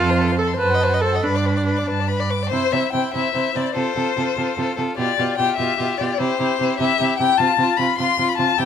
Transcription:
Already playing: F2 F4
0.00 A4 A5
0.10 C5 C6
0.18 A4 A5
0.27 C6
0.32 C5
0.38 A4 A5
0.43 A4
0.48 C6
0.54 C5
0.59 F#2 B4 A5
0.64 C5
0.70 F#5
0.74 D#5
0.81 C5 A5
0.89 F#5
0.94 D#5
1.01 A4 C5 A5
1.13 D#5 F#5
1.23 G2 D4 B4 B5
1.35 D5 D6
1.45 B4 B5
1.56 D5 D6
1.66 B4 B5
1.77 D5 D6
1.87 G2 B4 A5
2.00 D5
2.08 B4 B5
2.20 D5
2.30 B4 D6
2.42 D5
2.50 C3 E4 C5
2.72 C3 E4 C5 E5
2.93 C3 E4 C5 G5
3.13 C3 E4 C5 E5
3.34 C3 E4 C5
3.54 C3 E4 C5 D5
3.74 C3 F4 A4 C5
3.95 C3 F4 A4
4.16 C3 F4 A4
4.36 C3 F4 A4
4.57 C3 F4 A4
4.76 C3 F4 A4
4.96 B2 F4 G4 D5
5.18 B2 F4 G4
5.38 B2 F4 G4 G5
5.56 B2 F4 G4 E5
5.78 B2 F4 G4
5.98 B2 F4 G4 D5
6.17 C3 E4 G4 C5
6.39 C3 E4 G4
6.59 C3 E4 G4
6.78 C3 E4 G4 E5
6.99 C3 E4 G4
7.18 C3 E4 G4 G5
7.37 C3 F4 A5
7.58 C3 F4
7.77 C3 F4 B5
7.98 C3 F4 C6
8.18 C3 F4
8.29 B5
8.37 C3 F4 A5
8.58 C3 E4 G4 G5

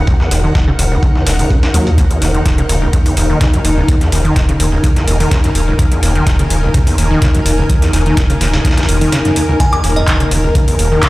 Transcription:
Already playing: D#4 A#4 F#5
0.07 D#2, kick, closed hi-hat
0.20 E2, snare
0.31 D#1 D#2, snare, closed hi-hat, open hi-hat
0.44 D#3
0.55 D#1 D#3, kick, snare, closed hi-hat
0.68 C#3
0.79 D#1 D#2, closed hi-hat, open hi-hat
0.92 C#2
1.03 C#3, kick, closed hi-hat
1.15 E2, snare
1.26 D#1 C#2, snare, closed hi-hat, open hi-hat
1.39 C#2, open hi-hat
1.50 D#3, kick, closed hi-hat
1.63 C#2, snare, closed hi-hat
1.74 D#2 F#3, open hi-hat
1.87 D#1, closed hi-hat
1.98 D#2, kick, closed hi-hat
2.10 E2, closed hi-hat
2.22 D#1 D#2, snare, closed hi-hat, open hi-hat
2.34 D#3, closed hi-hat
2.39 G#5
2.45 D#1 D#3, kick, snare, closed hi-hat
2.58 C#3, closed hi-hat
2.69 D#1 D#2, closed hi-hat, open hi-hat
2.82 C#2
2.93 C#3, kick, closed hi-hat
3.06 E2, open hi-hat
3.17 D#1 D#2, closed hi-hat, open hi-hat
3.30 D#3
3.41 C#3, kick, snare, closed hi-hat
3.53 F#2, closed hi-hat
3.65 D#1 D#2, closed hi-hat, open hi-hat
3.77 C#2
3.88 D#2, kick, closed hi-hat
4.01 E2, snare, closed hi-hat
4.12 D#1 D#2, snare, closed hi-hat, open hi-hat
4.25 D#3, closed hi-hat
4.36 D#1 D#3, kick, snare, closed hi-hat
4.49 C#3, closed hi-hat
4.60 D#1 D#2, closed hi-hat, open hi-hat
4.72 C#2
4.83 C#3, kick, closed hi-hat
4.96 E2, snare, closed hi-hat
5.07 D#1 D#2, closed hi-hat, open hi-hat
5.20 D#3, open hi-hat
5.31 C#3, kick, snare, closed hi-hat
5.44 F#2, snare, closed hi-hat
5.55 D#1 D#2, closed hi-hat, open hi-hat
5.68 C#2
5.79 D#2, kick, closed hi-hat
5.92 E2, closed hi-hat
6.03 D#1 D#2, snare, closed hi-hat, open hi-hat
6.15 D#3, closed hi-hat
6.27 D#1 D#3, kick, snare, closed hi-hat
6.39 C#3, closed hi-hat
6.50 D#1 D#2, closed hi-hat, open hi-hat
6.63 C#2
6.74 C#3, kick, closed hi-hat
6.87 E2, open hi-hat
6.98 D#1 D#2, closed hi-hat, open hi-hat
7.11 D#3
7.22 C#3, kick, snare, closed hi-hat
7.34 F#2, closed hi-hat
7.45 D#1 D#2, closed hi-hat, open hi-hat
7.58 C#2
7.69 D#2, kick, closed hi-hat
7.82 E2, snare, closed hi-hat
7.93 D#1 D#2, snare, closed hi-hat, open hi-hat
8.06 D#3, closed hi-hat
8.17 D#1 D#3, kick, snare, closed hi-hat
8.30 C#3, closed hi-hat
8.41 D#1 D#2, snare, closed hi-hat, open hi-hat
8.54 C#2, snare, closed hi-hat
8.65 C#3, kick, snare, closed hi-hat
8.71 snare, closed hi-hat
8.77 E2, snare, closed hi-hat
8.83 snare, closed hi-hat
8.88 D#1 D#2, closed hi-hat, open hi-hat
9.01 D#3, open hi-hat
9.12 C#3, snare, closed hi-hat
9.25 F#2, snare, closed hi-hat
9.36 D#2, closed hi-hat, open hi-hat
9.49 C#2
9.60 D#2 G#5, kick, closed hi-hat
9.72 E2 G#5, closed hi-hat, high woodblock
9.84 D#1 D#2, snare, closed hi-hat, open hi-hat
9.96 E2 D#5, closed hi-hat
10.01 F#5
10.07 D#1 D#3, kick, snare, clap, closed hi-hat
10.20 C#3, closed hi-hat
10.31 D#1 D#2, closed hi-hat, open hi-hat
10.44 C#2
10.55 C#3, kick, closed hi-hat
10.68 E2, open hi-hat
10.79 D#1 D#2, closed hi-hat, open hi-hat
10.92 D#3
11.03 C#3, kick, snare, clap, closed hi-hat

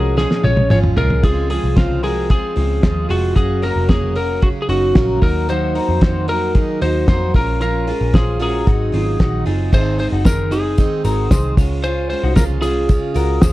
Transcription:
Already playing: C2 F3 G#3 C#4 F#4 G#4 A#4
0.17 A#2 F3 G#3 C#4 F4 G#4, snare
0.31 snare
0.43 A#1 F3 G#3 C#4 F4 C#5, high tom
0.57 high tom
0.70 G#1 A#2 F3 G#3 C#4 F4 G#4 C#5, mid tom
0.84 mid tom
0.96 C2 F3 G#3 C#4 F4 G#4 A#4, floor tom
1.10 floor tom
1.23 C#2 C#3 F3 G#3 C4 C#4 F4 G#4, kick, closed hi-hat
1.50 F3 G#3 C4 F4 G#4, open hi-hat
1.64 C2
1.76 C#3 F3 G#3 C4 F4 G#4 C5, kick, snare, closed hi-hat
2.03 F3 G#3 C4 F#4 G#4 A#4, open hi-hat
2.29 C#3 F3 G#3 C4 F4 G#4, kick, closed hi-hat
2.56 C#2 F3 G#3 C4 C#4 F4, open hi-hat
2.83 D#2 C#3 F3 G#3 C4 F4 G#4, kick, snare, closed hi-hat
3.09 F1 F3 G#3 C4 F4 F#4 G#4, open hi-hat
3.36 F#1 F#2 C#3 F#3 A#3 C#4 F#4 G#4, kick, closed hi-hat
3.62 F#3 A#3 C#4 F#4 A#4, open hi-hat
3.76 F1
3.89 F#2 C#3 F#3 A#3 C#4 G#4 A#4 C#5, kick, snare, closed hi-hat
4.16 F#3 A#3 C#4 F#4 A#4, open hi-hat
4.42 C#3 F#3 A#3 C#4 F#4 G#4, kick, closed hi-hat
4.62 G#4
4.69 F#1 F#3 A#3 C#4 D#4 F#4, open hi-hat
4.95 A#1 F#2 C#3 F#3 A#3 C#4 F#4 A#4, kick, snare, closed hi-hat
5.21 D#2 F#3 A#3 D#4 F#4 A#4, kick, open hi-hat
5.49 D#3 F#3 A#3 D#4 F#4 C5, closed hi-hat
5.75 F#3 A#3 D#4 F#4 A#4, open hi-hat
5.89 F2
6.01 D#3 F#3 A#3 D#4 F#4 C5, kick, snare, closed hi-hat
6.28 F#3 A#3 D#4 F#4 A#4, open hi-hat
6.54 D#3 F#3 A#3 D#4 G#4, kick, closed hi-hat
6.81 D#2 F#3 A#3 D#4 F#4 C5, open hi-hat
7.08 F2 D#3 F#3 A#3 D#4 F#4 A#4 C5, kick, snare, closed hi-hat
7.34 A#1 G#3 C#4 F4 A#4, kick, open hi-hat
7.61 A#2 F3 G#3 C#4 F4 A#4, closed hi-hat
7.87 G#3 C#4 F4 G#4, open hi-hat
8.01 A#1
8.14 A#2 F3 G#3 C#4 F4 G#4 C5, kick, snare, closed hi-hat
8.40 G#3 C#4 F4 F#4 G#4 A#4, open hi-hat
8.66 G#1 D#3 F#3 C4 D#4 F#4, kick, closed hi-hat
8.92 G#1 F#3 C4 C#4 D#4 F4, open hi-hat
9.19 A#1 G#2 D#3 F#3 C4 D#4 F#4, kick, snare, closed hi-hat
9.46 F#1 F#3 C4 D#4 F4 G#4, open hi-hat
9.72 G#1 G#2 D#3 G#3 C4 D#4 G#4 C5, kick, crash, tambourine
9.98 G#3 C4 D#4 C5, open hi-hat
10.12 F#1 D#4 F#4
10.24 D#3 G#3 C4 D#4 G#4 A#4, kick, snare, closed hi-hat, tambourine
10.51 G#3 C4 D#4 G#4, open hi-hat, tambourine
10.78 G#2 D#3 G#3 C4 D#4, kick, closed hi-hat, tambourine
11.04 G#1 G#3 C4 D#4 F#4 A#4, open hi-hat, tambourine
11.31 C2 D#3 G#3 C4 D#4 G#4 C5, kick, snare, closed hi-hat, tambourine
11.57 C#2 G#3 C#4 F4 G#4 C#5, kick, open hi-hat, tambourine
11.84 C#3 G#3 C#4 F4 G#4 C5, closed hi-hat
12.10 G#3 C#4 F4 C5, open hi-hat
12.24 C2 D#4 F#4
12.36 C#3 G#3 C#4 F4 G#4 A#4, kick, snare, closed hi-hat, tambourine
12.40 F4
12.62 G#3 C#4 F4 G#4, open hi-hat, tambourine
12.89 C#3 G#3 C#4 F4, kick, closed hi-hat, tambourine
13.14 C#2 G#3 C#4 F4 F#4 A#4, open hi-hat, tambourine
13.41 C#3 G#3 C#4 F4 G#4 C5, kick, snare, closed hi-hat, tambourine

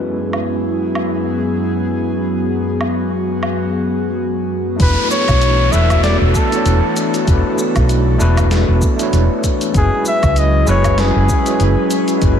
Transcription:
Already playing: F#2 F#3 G#3 B3 C#4 E4 F#4 G#4 B4
0.33 low woodblock
0.95 low woodblock
2.33 F#4
2.81 low woodblock
3.43 low woodblock
4.76 E1 A3 D4 E4, kick, closed hi-hat, downlifter, cabasa
4.80 E3 B3 D4 F#4 A4 B4
5.11 C#5, cabasa
5.28 B1, kick, closed hi-hat, cabasa, low woodblock
5.42 closed hi-hat, cabasa
5.71 E1 A3 D4 E4 F#4 B4 E5, cabasa
5.90 kick, closed hi-hat, cabasa, low woodblock
6.03 D5, snare, closed hi-hat, cabasa
6.21 E1
6.34 A4, kick, cabasa
6.49 A3 D4 E4, closed hi-hat, cabasa
6.54 F#4 C#5
6.65 E1, closed hi-hat, cabasa
6.96 closed hi-hat, cabasa
7.14 closed hi-hat, cabasa
7.24 E1 A3 D4 E4, kick, closed hi-hat, cabasa
7.29 F#4 B4
7.58 cabasa
7.76 B1, kick, closed hi-hat, cabasa, low woodblock
7.89 closed hi-hat, cabasa
8.18 E1 A3 D4 E4 F#4 B4, cabasa
8.37 kick, closed hi-hat, cabasa, low woodblock
8.51 snare, closed hi-hat, cabasa
8.68 E1
8.82 kick, cabasa
8.96 A3 D4 E4, closed hi-hat, cabasa
9.01 F#4 C#5
9.13 E1, closed hi-hat, cabasa
9.44 kick, closed hi-hat, cabasa
9.61 closed hi-hat, cabasa
9.71 F#1 F#3 G#3 C#4 E4 B4, kick, closed hi-hat, cabasa
9.75 F#4 G#4 B4
10.05 E5, cabasa
10.23 C#2, kick, closed hi-hat, cabasa, low woodblock
10.36 D#5, closed hi-hat, cabasa
10.66 F#1 G#3 C#4 E4 F#4 B4, cabasa
10.70 C#5
10.84 kick, closed hi-hat, cabasa, low woodblock
10.98 G#4, snare, closed hi-hat, cabasa
11.16 F#1
11.29 kick, cabasa
11.43 G#3 C#4 E4, closed hi-hat, cabasa
11.48 F#4 C#5
11.60 F#1, closed hi-hat, cabasa
11.90 closed hi-hat, cabasa
12.08 closed hi-hat, cabasa
12.18 F#1 G#3 C#4 E4, kick, closed hi-hat, cabasa
12.23 F#4 B4

